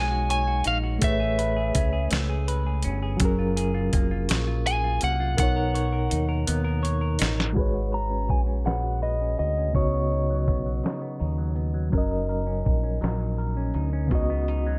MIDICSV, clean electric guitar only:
0, 0, Header, 1, 2, 480
1, 0, Start_track
1, 0, Key_signature, 6, "major"
1, 0, Tempo, 727273
1, 674, Time_signature, 6, 3, 24, 8
1, 9760, End_track
2, 0, Start_track
2, 0, Title_t, "Clean electric guitar"
2, 0, Program_c, 0, 27
2, 0, Note_on_c, 0, 56, 76
2, 0, Note_on_c, 0, 63, 57
2, 0, Note_on_c, 0, 73, 68
2, 71, Note_on_c, 0, 66, 58
2, 193, Note_off_c, 0, 73, 0
2, 196, Note_on_c, 0, 73, 64
2, 305, Note_off_c, 0, 66, 0
2, 313, Note_on_c, 0, 66, 61
2, 425, Note_off_c, 0, 63, 0
2, 432, Note_on_c, 0, 63, 62
2, 543, Note_off_c, 0, 66, 0
2, 551, Note_on_c, 0, 66, 61
2, 672, Note_off_c, 0, 56, 0
2, 674, Note_on_c, 0, 57, 83
2, 720, Note_off_c, 0, 66, 0
2, 721, Note_off_c, 0, 63, 0
2, 790, Note_on_c, 0, 68, 66
2, 912, Note_off_c, 0, 73, 0
2, 915, Note_on_c, 0, 71, 70
2, 1030, Note_off_c, 0, 68, 0
2, 1033, Note_on_c, 0, 68, 62
2, 1152, Note_on_c, 0, 61, 57
2, 1269, Note_off_c, 0, 68, 0
2, 1272, Note_on_c, 0, 68, 58
2, 1385, Note_off_c, 0, 57, 0
2, 1393, Note_on_c, 0, 57, 68
2, 1512, Note_off_c, 0, 68, 0
2, 1515, Note_on_c, 0, 68, 59
2, 1629, Note_off_c, 0, 71, 0
2, 1637, Note_on_c, 0, 71, 69
2, 1756, Note_off_c, 0, 68, 0
2, 1758, Note_on_c, 0, 68, 58
2, 1874, Note_off_c, 0, 61, 0
2, 1877, Note_on_c, 0, 61, 66
2, 1994, Note_off_c, 0, 68, 0
2, 1997, Note_on_c, 0, 68, 62
2, 2120, Note_on_c, 0, 54, 77
2, 2161, Note_off_c, 0, 57, 0
2, 2163, Note_off_c, 0, 71, 0
2, 2232, Note_off_c, 0, 61, 0
2, 2235, Note_on_c, 0, 65, 62
2, 2351, Note_off_c, 0, 68, 0
2, 2354, Note_on_c, 0, 68, 74
2, 2463, Note_off_c, 0, 65, 0
2, 2471, Note_on_c, 0, 65, 60
2, 2594, Note_on_c, 0, 58, 60
2, 2705, Note_off_c, 0, 65, 0
2, 2713, Note_on_c, 0, 65, 61
2, 2828, Note_off_c, 0, 54, 0
2, 2831, Note_on_c, 0, 54, 77
2, 2944, Note_off_c, 0, 65, 0
2, 2952, Note_on_c, 0, 65, 58
2, 3066, Note_off_c, 0, 68, 0
2, 3074, Note_on_c, 0, 68, 70
2, 3186, Note_off_c, 0, 65, 0
2, 3194, Note_on_c, 0, 65, 58
2, 3313, Note_off_c, 0, 58, 0
2, 3315, Note_on_c, 0, 58, 63
2, 3424, Note_off_c, 0, 65, 0
2, 3432, Note_on_c, 0, 65, 57
2, 3546, Note_off_c, 0, 58, 0
2, 3548, Note_on_c, 0, 59, 81
2, 3601, Note_off_c, 0, 65, 0
2, 3602, Note_off_c, 0, 68, 0
2, 3672, Note_on_c, 0, 70, 57
2, 3792, Note_on_c, 0, 73, 64
2, 3908, Note_off_c, 0, 70, 0
2, 3911, Note_on_c, 0, 70, 58
2, 4027, Note_on_c, 0, 63, 56
2, 4147, Note_off_c, 0, 70, 0
2, 4149, Note_on_c, 0, 70, 59
2, 4270, Note_off_c, 0, 59, 0
2, 4273, Note_on_c, 0, 59, 76
2, 4383, Note_off_c, 0, 70, 0
2, 4386, Note_on_c, 0, 70, 60
2, 4504, Note_off_c, 0, 73, 0
2, 4507, Note_on_c, 0, 73, 66
2, 4626, Note_off_c, 0, 70, 0
2, 4629, Note_on_c, 0, 70, 55
2, 4745, Note_off_c, 0, 63, 0
2, 4747, Note_on_c, 0, 63, 63
2, 4862, Note_off_c, 0, 70, 0
2, 4865, Note_on_c, 0, 70, 56
2, 4987, Note_off_c, 0, 59, 0
2, 4990, Note_off_c, 0, 73, 0
2, 4990, Note_on_c, 0, 56, 68
2, 4993, Note_on_c, 0, 71, 59
2, 5010, Note_off_c, 0, 54, 0
2, 5105, Note_off_c, 0, 70, 0
2, 5107, Note_on_c, 0, 66, 53
2, 5225, Note_off_c, 0, 71, 0
2, 5227, Note_on_c, 0, 71, 55
2, 5343, Note_off_c, 0, 63, 0
2, 5346, Note_on_c, 0, 61, 61
2, 5464, Note_off_c, 0, 66, 0
2, 5467, Note_on_c, 0, 66, 48
2, 5584, Note_off_c, 0, 61, 0
2, 5587, Note_on_c, 0, 61, 51
2, 5706, Note_off_c, 0, 56, 0
2, 5709, Note_on_c, 0, 56, 65
2, 5710, Note_off_c, 0, 71, 0
2, 5712, Note_on_c, 0, 71, 54
2, 5827, Note_off_c, 0, 66, 0
2, 5829, Note_on_c, 0, 66, 48
2, 5952, Note_off_c, 0, 71, 0
2, 5954, Note_on_c, 0, 71, 59
2, 6076, Note_off_c, 0, 61, 0
2, 6079, Note_on_c, 0, 61, 57
2, 6193, Note_off_c, 0, 66, 0
2, 6195, Note_on_c, 0, 66, 56
2, 6317, Note_off_c, 0, 61, 0
2, 6320, Note_on_c, 0, 61, 55
2, 6440, Note_on_c, 0, 49, 68
2, 6442, Note_off_c, 0, 66, 0
2, 6445, Note_on_c, 0, 63, 57
2, 6556, Note_off_c, 0, 61, 0
2, 6559, Note_on_c, 0, 59, 53
2, 6677, Note_off_c, 0, 63, 0
2, 6680, Note_on_c, 0, 63, 60
2, 6796, Note_off_c, 0, 56, 0
2, 6799, Note_on_c, 0, 54, 62
2, 6908, Note_off_c, 0, 59, 0
2, 6916, Note_on_c, 0, 59, 50
2, 7032, Note_off_c, 0, 54, 0
2, 7035, Note_on_c, 0, 54, 50
2, 7142, Note_off_c, 0, 49, 0
2, 7150, Note_on_c, 0, 49, 68
2, 7153, Note_off_c, 0, 63, 0
2, 7155, Note_on_c, 0, 63, 55
2, 7170, Note_off_c, 0, 71, 0
2, 7263, Note_off_c, 0, 59, 0
2, 7271, Note_on_c, 0, 59, 52
2, 7387, Note_off_c, 0, 63, 0
2, 7389, Note_on_c, 0, 63, 64
2, 7509, Note_off_c, 0, 54, 0
2, 7511, Note_on_c, 0, 54, 56
2, 7617, Note_off_c, 0, 59, 0
2, 7625, Note_on_c, 0, 59, 55
2, 7745, Note_off_c, 0, 54, 0
2, 7748, Note_on_c, 0, 54, 54
2, 7866, Note_off_c, 0, 54, 0
2, 7868, Note_on_c, 0, 54, 68
2, 7873, Note_on_c, 0, 70, 62
2, 7917, Note_off_c, 0, 59, 0
2, 7920, Note_off_c, 0, 49, 0
2, 7992, Note_off_c, 0, 63, 0
2, 7995, Note_on_c, 0, 63, 53
2, 8105, Note_off_c, 0, 70, 0
2, 8113, Note_on_c, 0, 70, 61
2, 8229, Note_on_c, 0, 61, 61
2, 8348, Note_off_c, 0, 63, 0
2, 8351, Note_on_c, 0, 63, 56
2, 8468, Note_off_c, 0, 61, 0
2, 8471, Note_on_c, 0, 61, 51
2, 8584, Note_off_c, 0, 54, 0
2, 8585, Note_off_c, 0, 70, 0
2, 8587, Note_on_c, 0, 54, 69
2, 8593, Note_on_c, 0, 70, 59
2, 8713, Note_off_c, 0, 63, 0
2, 8715, Note_on_c, 0, 63, 52
2, 8825, Note_off_c, 0, 70, 0
2, 8833, Note_on_c, 0, 70, 68
2, 8952, Note_off_c, 0, 61, 0
2, 8954, Note_on_c, 0, 61, 61
2, 9071, Note_off_c, 0, 63, 0
2, 9073, Note_on_c, 0, 63, 56
2, 9191, Note_off_c, 0, 61, 0
2, 9194, Note_on_c, 0, 61, 59
2, 9314, Note_on_c, 0, 49, 70
2, 9315, Note_off_c, 0, 63, 0
2, 9318, Note_on_c, 0, 63, 60
2, 9361, Note_off_c, 0, 70, 0
2, 9435, Note_off_c, 0, 61, 0
2, 9438, Note_on_c, 0, 59, 58
2, 9559, Note_off_c, 0, 63, 0
2, 9561, Note_on_c, 0, 63, 64
2, 9676, Note_off_c, 0, 54, 0
2, 9679, Note_on_c, 0, 54, 60
2, 9760, Note_off_c, 0, 49, 0
2, 9760, Note_off_c, 0, 54, 0
2, 9760, Note_off_c, 0, 59, 0
2, 9760, Note_off_c, 0, 63, 0
2, 9760, End_track
0, 0, End_of_file